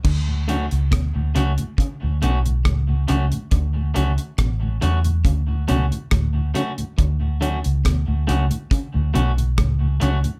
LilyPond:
<<
  \new Staff \with { instrumentName = "Clean electric guitar" } { \time 4/4 \key d \major \tempo 4 = 69 r8 <a cis' fis'>8 r8 <a cis' fis'>8 r8 <a cis' fis'>8 r8 <a cis' fis'>8 | r8 <a cis' fis'>8 r8 <a cis' fis'>8 r8 <a cis' fis'>8 r8 <a cis' fis'>8 | r8 <a cis' fis'>8 r8 <a cis' fis'>8 r8 <a cis' fis'>8 r8 <a cis' fis'>8 | }
  \new Staff \with { instrumentName = "Clean electric guitar" } { \clef bass \time 4/4 \key d \major d16 r16 d16 r16 b,16 r16 cis16 r16 cis16 r16 b,16 r16 a,16 r16 cis16 r16 | d16 r16 d16 r16 b,16 r16 cis16 r16 cis16 r16 b,16 r16 a,16 r16 cis16 r16 | d16 r16 d16 r16 b,16 r16 cis16 r16 cis16 r16 b,16 r16 a,16 r16 cis16 r16 | }
  \new Staff \with { instrumentName = "Tonewheel organ" } { \clef bass \time 4/4 \key d \major << { r8 <d fis cis'>8 r8 <d fis cis'>8 r8 <d fis cis'>8 r8 <d fis cis'>8 | r8 <d fis cis'>8 r8 <d fis cis'>8 r8 <d fis cis'>8 r8 <d fis cis'>8 | r8 <d fis cis'>8 r8 <d fis cis'>8 r8 <d fis cis'>8 r8 <d fis cis'>8 | } \\ { r16 <d, a,>16 r8. <d, a,>16 r16 <d, a,>16 r16 <d, a,>16 r16 <d, a,>16 r16 <d, a,>16 r16 <d, a,>16 | r16 <d, a,>16 r8. <d, a,>16 r16 <d, a,>16 r16 <d, a,>16 r16 <d, a,>16 r16 <d, a,>16 r16 <d, a,>16 | r16 <d, a,>16 r8. <d, a,>16 r16 <d, a,>16 r16 <d, a,>16 r16 <d, a,>16 r16 <d, a,>16 r16 <d, a,>16 | } >> }
  \new Staff \with { instrumentName = "Fingered electric bass" } { \clef bass \time 4/4 \key d \major d,8. cis,16 d,16 d,16 cis,16 r8 d,16 b,,8 cis,8 cis,16 r16 | d,8 cis,16 r16 a,,8 e,8 d,8 cis,16 r16 d,8 r8 | d,8. cis,16 d,16 d,16 cis,16 r8 d,16 b,,8 cis,8 cis,16 r16 | }
  \new DrumStaff \with { instrumentName = "Drums" } \drummode { \time 4/4 <cymc bd>8 hh16 hh16 <hh bd ss>8 hh16 hh16 <hh bd>8 hh16 hh16 <hh bd ss>8 hh16 hh16 | <hh bd>8 hh16 hh16 <hh bd ss>8 hh16 hh16 <hh bd>8 hh16 hh16 <hh bd ss>8 hh16 hh16 | <hh bd>8 hh16 hh16 <hh bd ss>8 hh16 hh16 <hh bd>8 hh16 hh16 <hh bd ss>8 hh16 hh16 | }
>>